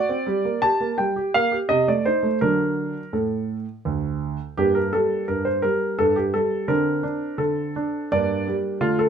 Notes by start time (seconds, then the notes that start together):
Already playing: D5
0.09 C4
0.27 G3
0.45 A#3
0.62 G4 A5
0.80 A#3
0.98 G3 G5
1.16 G4
1.34 A#3 F5
1.52 G4
1.69 C3 D#5
1.88 A3 D5
2.05 D#4 C5
2.23 A3
2.41 D3 F#3 D4 A#4
3.13 A2 A4
3.85 D2
4.57 G2 A#3 D4 G4
4.75 A#4
4.93 G3 A4
5.28 G2 A#4
5.45 C5
5.62 G3 A#4
5.99 G2 A4
6.16 G4
6.34 G3 A4
6.68 D3 C4 D4 A#4
7.03 D4
7.38 D3 A4
7.76 D4
8.12 G2 A#3 D4 D5
8.48 G3
8.81 D3 A3 D4 F4
8.99 A4